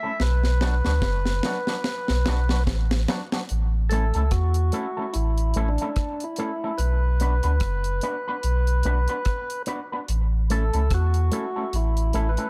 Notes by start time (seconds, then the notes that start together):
Already playing: E5
0.03 A3 C#4 E4 A4
0.20 B1 B4, snare
0.44 snare
0.61 F#3 B3 D4 F#4, snare
0.85 D2 F#3 B3 D4 F#4, snare
1.02 F#1, kick, snare
1.26 snare
1.43 F#3 B3 D4 F#4, snare
1.67 F#3 B3 D4 F#4, snare
1.84 snare
2.08 B1, snare
2.26 B1 F#3 B3 D4 F#4, snare
2.49 F#3 B3 D4 F#4, snare
2.67 A1, kick, snare
2.91 snare
3.08 F#3 B3 D4 F#4, snare
3.32 F#3 B3 D4 F#4, snare
3.49 A1, closed hi-hat
3.89 A3 C#4 E4 A4, closed hi-hat
4.14 C#2 A3 C#4 E4 A4, closed hi-hat
4.31 E2 F#4, kick, cross-stick, closed hi-hat
4.54 closed hi-hat
4.72 A3 C#4 E4 A4, closed hi-hat
4.97 A3 C#4 E4 A4
5.13 A1 E4, closed hi-hat
5.38 closed hi-hat
5.54 A1 A3 C#4 E4 A4, closed hi-hat
5.69 D4
5.78 C#4 E4 A4, closed hi-hat
5.83 A3
5.96 kick, cross-stick, closed hi-hat
6.20 E4, closed hi-hat
6.36 A3 C#4 E4 A4, closed hi-hat
6.64 A3 C#4 E4 A4
6.78 B1 B4, closed hi-hat
7.20 B3 D4 F#4 B4, closed hi-hat
7.43 D2 B3 D4 F#4 B4, closed hi-hat
7.60 F#1, kick, cross-stick, closed hi-hat
7.84 closed hi-hat
8.01 B3 D4 F#4 B4, closed hi-hat
8.28 B3 D4 F#4 B4
8.43 B1, closed hi-hat
8.67 closed hi-hat
8.83 B1 B3 D4 F#4 B4, closed hi-hat
9.08 B3 D4 F#4 B4, closed hi-hat
9.25 kick, cross-stick, closed hi-hat
9.50 closed hi-hat
9.66 B3 D4 F#4 B4, closed hi-hat
9.92 B3 D4 F#4 B4
10.08 A1, closed hi-hat
10.50 A3 C#4 E4 A4, closed hi-hat
10.73 C#2 A3 C#4 E4 A4, closed hi-hat
10.90 E2 F#4, kick, cross-stick, closed hi-hat
11.14 closed hi-hat
11.32 A3 C#4 E4 A4, closed hi-hat
11.56 A3 C#4 E4 A4
11.73 A1 E4, closed hi-hat
11.97 closed hi-hat
12.13 A1 A3 C#4 E4 A4, closed hi-hat
12.29 B4
12.37 A3 C#4 E4 A4, closed hi-hat